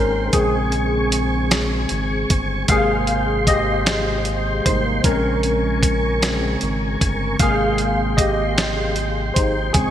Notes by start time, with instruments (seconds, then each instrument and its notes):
Already playing: analog synth bass G#1, tine electric piano D#3 A#3 C4 C#4 D#4 G4 A#4 C5, tonewheel organ G#3 G5 C6
0.33 analog synth bass A#1, tine electric piano C#3 G#3 C4 G#4, tonewheel organ C4 G#5 C#6, kick, closed hi-hat
0.72 closed hi-hat
1.12 closed hi-hat
1.51 snare, closed hi-hat
1.89 analog synth bass G#1, closed hi-hat
2.30 analog synth bass G1, kick, closed hi-hat
2.68 analog synth bass G#1, tine electric piano C3 G#3 A#3 G#4 F5, tonewheel organ C5 G5 C6, kick, closed hi-hat
3.07 closed hi-hat
3.47 tine electric piano G4 D#5, kick, closed hi-hat
3.86 snare, closed hi-hat
4.25 closed hi-hat
4.65 analog synth bass G#1, tine electric piano C3 G3 A#3 D#4 C5, kick, closed hi-hat
5.04 analog synth bass A#1, tine electric piano C#3 G#3 C4 C#4 A#4, tonewheel organ A#4 G#5 C#6, kick, closed hi-hat
5.43 closed hi-hat
5.83 kick, closed hi-hat
6.22 tine electric piano C#3 G#3 C4, snare, closed hi-hat
6.61 analog synth bass G#1, closed hi-hat
7.01 analog synth bass G1, kick, closed hi-hat
7.39 analog synth bass G#1, tine electric piano C3 G#3 A#3 G#4 F5, tonewheel organ G#3 G5 C6, kick, closed hi-hat
7.78 closed hi-hat
8.17 tine electric piano G4 D#5, kick, closed hi-hat
8.58 snare, closed hi-hat
8.96 closed hi-hat
9.34 analog synth bass G#1, tine electric piano D#4 C5, kick, closed hi-hat
9.73 analog synth bass A#1, tine electric piano C#3 G#3 C4 G#4, tonewheel organ C4 G#5 C#6, kick, closed hi-hat